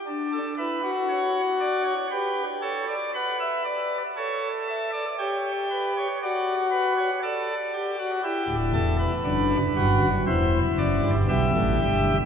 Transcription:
<<
  \new Staff \with { instrumentName = "Pipe organ" } { \time 4/4 \key g \major \tempo 4 = 59 << { r16 a'16 b'8 cis''8 d''16 cis''16 b'8 cis''16 d''16 fis''16 e''16 d''8 | cis''8 e''16 d''16 cis''8 b'16 cis''16 d''8 b'16 cis''16 d''4 | g'8 a'16 b'4~ b'16 c''8 d''8 e''4 | } \\ { d'8 e'16 fis'4~ fis'16 g'8 a'8 b'4 | a'4 g'4 fis'4 a'8 g'16 fis'16 | e'4 d'8 fis'8 e'4 g'4 | } >> }
  \new Staff \with { instrumentName = "Pipe organ" } { \clef bass \time 4/4 \key g \major r1 | r1 | r16 <d,, d,>16 <e,, e,>8 <fis,, fis,>8 <g,, g,>16 <fis,, fis,>16 <e,, e,>8 <fis,, fis,>16 <g,, g,>16 <b,, b,>16 <a,, a,>16 <g,, g,>8 | }
>>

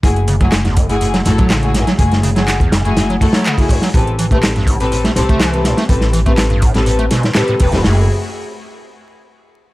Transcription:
<<
  \new Staff \with { instrumentName = "String section" } { \time 4/4 \key a \major \tempo 4 = 123 <a e' fis' gis'>16 r8 <a e' fis' gis'>16 r8. <a e' fis' gis'>16 r8 <a e' fis' a'>16 r8 <a e' fis' gis'>16 r8 | <a e' fis' gis'>16 r8 <a e' fis' gis'>16 r8. <a e' fis' gis'>16 r8 <a e' fis' a'>16 r8 <a e' fis' gis'>16 r8 | <c' g' a' b'>16 r8 <c' g' a' b'>16 r8. <c' g' a' b'>16 r8 <c' g' a' c''>16 r8 <c' g' a' b'>16 r8 | <c' g' a' b'>16 r8 <c' g' a' b'>16 r8. <c' g' a' b'>16 r4 <c' g' a' b'>16 r16 <c' g' a' b'>16 <c' g' a' b'>16 |
<a e' fis' gis'>8 r2. r8 | }
  \new Staff \with { instrumentName = "Acid bass" } { \clef bass \time 4/4 \key a \major fis,16 r16 cis16 fis16 r16 e,16 fis,16 fis,16 fis,16 fis16 fis,16 fis16 cis8 fis,16 fis16 | fis,16 r16 cis16 fis16 r16 e,16 fis,16 fis,16 fis,16 fis16 fis,16 fis16 cis8 fis,16 fis16 | a,16 r16 e16 a16 r16 g,16 a,16 a,16 a,16 a16 a,16 a16 e8 a,16 a16 | a,16 r16 e16 a16 r16 g,16 a,16 a,16 a,16 a16 b,16 a,16 a,16 a,16 a,,16 a,16 |
fis,8 r2. r8 | }
  \new Staff \with { instrumentName = "Upright bass" } { \clef bass \time 4/4 \key a \major fis,,2~ fis,,8 a,,4~ a,,16 r16 | fis,,2~ fis,,8 r4. | a,,2~ a,,8 c,4~ c,16 r16 | a,,2~ a,,8 r4 e,,16 e,,16 |
fis,,8 r2. r8 | }
  \new DrumStaff \with { instrumentName = "Drums" } \drummode { \time 4/4 <hh bd>16 hh16 hh16 <hh bd>16 <hc hh sn>16 <hh sn>16 <hh bd>16 hh16 hh16 <hh sn>16 <hh sn>16 <hh bd>16 <hc hh sn>16 hh16 <hh sn>16 <hh sn>16 | <hh bd>16 <hh sn>16 hh16 <hh sn>16 <hc hh sn>16 <hh bd>16 <hh sn>16 hh16 <hh sn>16 hh16 <hh hho bd>16 <hh sn>16 <hc hh>16 <hh hho bd>16 <hh hho bd>16 <hh sn>16 | <hh bd>16 hh16 hh16 <hh bd>16 <hc hh sn>16 <hh sn>16 <hh bd>16 hh16 hh16 <hh sn>16 <hh sn>16 <hh bd>16 <hc hh sn>16 hh16 <hh sn>16 <hh sn>16 | <hh bd>16 <hh sn>16 hh16 <hh bd>16 <hc hh sn>16 hh16 <hh bd>16 <hh sn>16 hh16 hh16 <hh sn>16 <hh sn>16 <hc hh sn>16 hh16 <hh hho bd>16 <hh sn>16 |
<hho sn>4 r4 r4 r4 | }
>>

